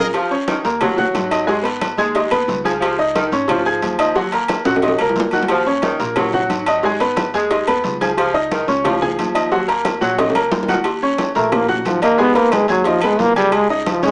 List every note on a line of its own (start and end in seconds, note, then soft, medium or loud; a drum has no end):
0.14 0.32 F3 loud
0.14 cowbell loud
0.14 high conga soft
0.14 low agogo loud
0.14 long guiro medium
0.31 0.58 C#4 medium
0.31 0.59 C#5 medium
0.31 0.59 C#6 medium
0.31 high conga soft
0.47 0.65 D#3 medium
0.47 cowbell medium
0.47 high conga loud
0.47 low agogo medium
0.47 short guiro medium
0.64 1.11 D#2 loud
0.64 0.92 A#3 medium
0.64 0.92 A#4 medium
0.64 0.92 A#5 medium
0.64 cowbell medium
0.64 high conga soft
0.64 short guiro medium
0.81 1.55 F#3 medium
0.81 cowbell loud
0.81 high conga soft
0.81 low conga medium
0.81 low agogo loud
0.81 long guiro medium
0.97 1.25 F#4 medium
0.97 1.25 F#5 medium
0.97 1.25 F#6 medium
0.97 high conga soft
0.97 low conga medium
1.14 1.93 G#1 medium
1.14 cowbell medium
1.14 high conga medium
1.14 low timbale medium
1.14 low agogo medium
1.14 short guiro medium
1.31 1.45 D#4 medium
1.31 1.45 D#5 medium
1.31 1.45 D#6 medium
1.31 cowbell medium
1.31 low agogo loud
1.31 short guiro medium
1.47 1.61 G#3 medium
1.47 1.62 G#4 medium
1.47 1.61 G#5 medium
1.47 cowbell loud
1.47 high conga soft
1.47 long guiro medium
1.63 1.91 B3 medium
1.63 1.91 B4 medium
1.63 1.92 B5 medium
1.63 cowbell medium
1.63 high conga soft
1.63 low agogo medium
1.81 cowbell medium
1.81 high conga medium
1.81 low agogo loud
1.81 short guiro medium
1.97 2.29 D#2 loud
1.97 2.36 G#3 medium
1.97 2.12 G#4 medium
1.97 2.12 G#5 medium
1.97 2.12 G#6 medium
1.97 cowbell medium
1.97 short guiro medium
2.15 2.29 D#4 medium
2.15 2.29 D#5 medium
2.15 2.29 D#6 medium
2.15 cowbell loud
2.15 high conga soft
2.15 low agogo medium
2.15 long guiro medium
2.31 2.47 D#2 medium
2.31 2.59 B3 medium
2.31 2.59 B4 medium
2.31 2.59 B5 medium
2.31 high conga soft
2.31 low agogo loud
2.48 3.26 C#2 loud
2.48 cowbell medium
2.48 high conga medium
2.48 short guiro medium
2.64 2.73 F3 medium
2.64 2.93 G#4 medium
2.64 2.93 G#5 medium
2.64 2.93 G#6 medium
2.64 high conga medium
2.64 low agogo medium
2.64 short guiro medium
2.80 2.98 F3 loud
2.80 cowbell loud
2.80 high conga soft
2.80 low agogo loud
2.80 long guiro medium
2.98 3.26 D#4 medium
2.98 3.26 D#5 medium
2.98 3.27 D#6 medium
2.98 high conga soft
3.15 3.33 D#3 medium
3.15 cowbell medium
3.15 high conga loud
3.15 low agogo medium
3.15 short guiro medium
3.32 3.79 G#1 loud
3.32 3.60 C#4 medium
3.32 3.60 C#5 medium
3.32 3.60 C#6 medium
3.32 cowbell medium
3.32 high conga soft
3.32 short guiro medium
3.48 4.23 F3 medium
3.48 cowbell loud
3.48 high conga soft
3.48 low conga medium
3.48 low agogo loud
3.48 long guiro medium
3.66 3.93 G#4 medium
3.66 3.93 G#5 medium
3.66 3.94 G#6 medium
3.66 high conga soft
3.82 4.60 D#2 loud
3.82 cowbell medium
3.82 high conga medium
3.82 low agogo medium
3.82 short guiro medium
3.99 4.13 D#4 medium
3.99 4.13 D#5 medium
3.99 4.13 D#6 medium
3.99 cowbell medium
3.99 low agogo loud
3.99 short guiro medium
4.15 4.30 F#3 medium
4.15 4.30 F#4 medium
4.15 4.30 F#5 medium
4.15 cowbell loud
4.15 high conga soft
4.15 long guiro medium
4.32 4.61 A#3 medium
4.32 4.61 A#4 medium
4.32 4.61 A#5 medium
4.32 cowbell medium
4.32 high conga soft
4.32 low agogo medium
4.48 cowbell medium
4.48 high conga loud
4.48 low agogo loud
4.48 short guiro medium
4.65 4.97 A#1 medium
4.65 5.04 F#3 medium
4.65 4.80 F#4 medium
4.65 4.80 F#5 medium
4.65 4.80 F#6 medium
4.65 cowbell medium
4.65 high timbale medium
4.65 short guiro medium
4.76 high timbale loud
4.82 4.97 D#4 medium
4.82 4.97 D#5 medium
4.82 4.97 D#6 medium
4.82 cowbell loud
4.82 high conga soft
4.82 low agogo medium
4.82 long guiro medium
4.88 high timbale medium
4.99 5.15 C#2 medium
4.99 5.27 A#3 medium
4.99 5.28 A#4 medium
4.99 5.28 A#5 medium
4.99 high conga soft
4.99 low agogo loud
5.09 low timbale medium
5.16 5.94 D#2 medium
5.16 cowbell medium
5.16 high conga medium
5.16 short guiro medium
5.20 low timbale loud
5.31 5.41 D#3 medium
5.31 5.60 F#4 medium
5.31 5.61 F#5 medium
5.31 5.61 F#6 medium
5.31 high conga medium
5.31 low agogo medium
5.31 short guiro medium
5.43 low timbale medium
5.48 5.68 F3 loud
5.48 cowbell loud
5.48 high conga soft
5.48 low agogo loud
5.48 long guiro medium
5.66 5.94 C#4 medium
5.66 5.94 C#5 medium
5.66 5.94 C#6 medium
5.66 high conga soft
5.82 6.00 D#3 medium
5.82 cowbell medium
5.82 high conga loud
5.82 low agogo medium
5.82 short guiro medium
5.99 6.47 A#1 loud
5.99 6.27 A#3 medium
5.99 6.27 A#4 medium
5.99 6.27 A#5 medium
5.99 cowbell medium
5.99 high conga soft
5.99 short guiro medium
6.16 6.90 F#3 medium
6.16 cowbell loud
6.16 high conga soft
6.16 low conga medium
6.16 low agogo loud
6.16 long guiro medium
6.33 6.61 F#4 medium
6.33 6.61 F#5 medium
6.33 6.61 F#6 medium
6.33 high conga soft
6.33 low conga medium
6.50 7.28 G#1 loud
6.50 cowbell medium
6.50 high conga medium
6.50 low agogo medium
6.50 short guiro medium
6.66 6.81 D#4 medium
6.66 6.81 D#5 medium
6.66 6.82 D#6 medium
6.66 cowbell medium
6.66 high conga soft
6.66 low agogo loud
6.66 short guiro medium
6.83 6.98 G#3 medium
6.83 6.98 G#4 medium
6.83 6.98 G#5 medium
6.83 cowbell loud
6.83 high conga soft
6.83 long guiro medium
7.00 7.28 B3 medium
7.00 7.28 B4 medium
7.00 7.28 B5 medium
7.00 cowbell medium
7.00 high conga soft
7.00 low agogo medium
7.16 cowbell medium
7.16 high conga loud
7.16 low agogo loud
7.16 short guiro medium
7.34 7.65 D#2 medium
7.34 7.73 G#3 medium
7.34 7.48 G#4 medium
7.34 7.48 G#5 medium
7.34 7.49 G#6 medium
7.34 cowbell medium
7.34 short guiro medium
7.50 7.64 D#4 medium
7.50 7.64 D#5 medium
7.50 7.64 D#6 medium
7.50 cowbell loud
7.50 high conga soft
7.50 low agogo medium
7.50 long guiro medium
7.67 7.83 D#2 medium
7.67 7.95 B3 medium
7.67 7.95 B4 medium
7.67 7.95 B5 medium
7.67 high conga soft
7.67 low agogo loud
7.84 8.62 C#2 loud
7.84 cowbell medium
7.84 high conga medium
7.84 short guiro medium
8.01 8.10 F3 medium
8.01 8.28 G#4 medium
8.01 8.29 G#5 medium
8.01 8.29 G#6 medium
8.01 high conga medium
8.01 low agogo medium
8.01 short guiro medium
8.17 8.35 F3 loud
8.17 cowbell loud
8.17 high conga soft
8.17 low agogo loud
8.17 long guiro medium
8.34 8.62 D#4 medium
8.34 8.62 D#5 medium
8.34 8.62 D#6 medium
8.34 high conga soft
8.51 8.69 D#3 medium
8.51 cowbell medium
8.51 high conga medium
8.51 low agogo medium
8.51 short guiro medium
8.68 9.15 C#2 loud
8.68 8.95 C#4 medium
8.68 8.96 C#5 medium
8.68 8.96 C#6 medium
8.68 cowbell medium
8.68 short guiro medium
8.84 9.58 F3 medium
8.84 cowbell loud
8.84 high conga soft
8.84 low conga medium
8.84 low agogo loud
8.84 long guiro medium
9.02 9.29 G#4 medium
9.02 9.29 G#5 medium
9.02 9.29 G#6 medium
9.02 high conga soft
9.02 low conga medium
9.19 9.96 D#2 loud
9.19 cowbell medium
9.19 high conga medium
9.19 low agogo medium
9.19 short guiro medium
9.35 9.49 D#4 medium
9.35 9.49 D#5 medium
9.35 9.49 D#6 medium
9.35 cowbell medium
9.35 low agogo loud
9.35 short guiro medium
9.52 9.65 F#3 medium
9.52 9.66 F#4 medium
9.52 9.66 F#5 medium
9.52 cowbell loud
9.52 high conga soft
9.52 long guiro medium
9.68 9.95 A#3 medium
9.68 9.95 A#4 medium
9.68 9.96 A#5 medium
9.68 cowbell medium
9.68 high conga soft
9.68 low agogo medium
9.85 cowbell medium
9.85 high bongo medium
9.85 high conga medium
9.85 low agogo loud
9.85 short guiro medium
10.01 10.33 A#1 medium
10.01 10.41 F#3 medium
10.01 10.15 F#4 medium
10.01 10.15 F#5 medium
10.01 10.15 F#6 medium
10.01 cowbell medium
10.01 short guiro medium
10.18 10.32 D#4 medium
10.18 10.32 D#5 medium
10.18 10.32 D#6 medium
10.18 cowbell loud
10.18 low bongo loud
10.18 high conga soft
10.18 high timbale medium
10.18 low agogo medium
10.18 long guiro medium
10.30 high timbale medium
10.35 10.51 C#2 medium
10.35 10.62 A#3 medium
10.35 10.63 A#4 medium
10.35 10.63 A#5 medium
10.35 high conga soft
10.35 low agogo loud
10.51 11.30 D#2 medium
10.51 cowbell medium
10.51 low bongo medium
10.51 high conga medium
10.51 low timbale loud
10.51 short guiro medium
10.63 low timbale medium
10.68 10.77 D#3 medium
10.68 10.83 F#4 medium
10.68 10.83 F#5 medium
10.68 10.83 F#6 medium
10.68 low bongo medium
10.68 high conga medium
10.68 low agogo medium
10.68 short guiro medium
10.73 low timbale medium
10.84 cowbell loud
10.84 high conga soft
10.84 low agogo loud
10.84 long guiro medium
11.02 11.30 C#4 medium
11.02 11.30 C#5 medium
11.02 11.30 C#6 medium
11.02 high conga soft
11.18 cowbell medium
11.18 high conga loud
11.18 low agogo medium
11.18 short guiro medium
11.35 11.82 A#1 loud
11.35 11.54 A3 medium
11.35 11.63 A#3 medium
11.35 11.63 A#4 medium
11.35 11.63 A#5 medium
11.35 cowbell medium
11.35 high conga soft
11.35 short guiro medium
11.52 11.69 A#3 medium
11.52 cowbell loud
11.52 high conga soft
11.52 low conga medium
11.52 low agogo loud
11.52 long guiro medium
11.68 11.86 C#3 medium
11.68 11.96 F#4 medium
11.68 11.96 F#5 medium
11.68 11.96 F#6 medium
11.68 high conga soft
11.68 low conga medium
11.85 12.63 G#1 loud
11.85 12.02 F3 medium
11.85 cowbell medium
11.85 high conga medium
11.85 low timbale medium
11.85 low agogo medium
11.85 short guiro medium
12.02 12.21 A#3 loud
12.02 12.16 D#4 medium
12.02 12.16 D#5 medium
12.02 12.16 D#6 medium
12.02 cowbell medium
12.02 high conga soft
12.02 low agogo loud
12.02 short guiro medium
12.18 12.32 G#3 medium
12.18 12.37 B3 loud
12.18 12.32 G#4 medium
12.18 12.33 G#5 medium
12.18 cowbell loud
12.18 high conga soft
12.18 long guiro medium
12.34 12.54 A#3 medium
12.34 12.62 B3 medium
12.34 12.63 B4 medium
12.34 12.63 B5 medium
12.34 cowbell medium
12.34 high conga soft
12.34 low agogo medium
12.52 12.69 G#3 medium
12.52 cowbell medium
12.52 high conga loud
12.52 low agogo loud
12.52 short guiro medium
12.68 13.00 D#2 loud
12.68 12.88 F#3 medium
12.68 12.83 G#4 medium
12.68 12.83 G#5 medium
12.68 12.83 G#6 medium
12.68 cowbell medium
12.68 short guiro medium
12.84 13.03 F3 medium
12.84 13.00 D#4 medium
12.84 13.00 D#5 medium
12.84 13.00 D#6 medium
12.84 cowbell loud
12.84 high conga soft
12.84 low agogo medium
12.84 long guiro medium
13.01 13.18 D#2 medium
13.01 13.22 G#3 medium
13.01 13.30 B3 medium
13.01 13.31 B4 medium
13.01 13.31 B5 medium
13.01 high conga soft
13.01 low agogo loud
13.19 13.97 C#2 loud
13.19 13.36 A#3 loud
13.19 cowbell medium
13.19 high conga medium
13.19 low timbale medium
13.19 short guiro medium
13.36 13.55 G3 loud
13.36 13.64 G#4 medium
13.36 13.64 G#5 medium
13.36 13.64 G#6 medium
13.36 high conga medium
13.36 low agogo medium
13.36 short guiro medium
13.52 13.70 G#3 medium
13.52 cowbell loud
13.52 high conga soft
13.52 low agogo loud
13.52 long guiro medium
13.70 13.87 C#3 medium
13.70 13.97 D#4 medium
13.70 13.97 D#5 medium
13.70 13.97 D#6 medium
13.70 high conga soft
13.86 14.04 F3 medium
13.86 cowbell medium
13.86 high conga loud
13.86 low agogo medium
13.86 short guiro medium
14.02 14.11 G#1 loud
14.02 14.11 G#3 medium
14.02 14.11 C#4 medium
14.02 14.11 C#5 medium
14.02 14.11 C#6 medium
14.02 cowbell medium
14.02 short guiro medium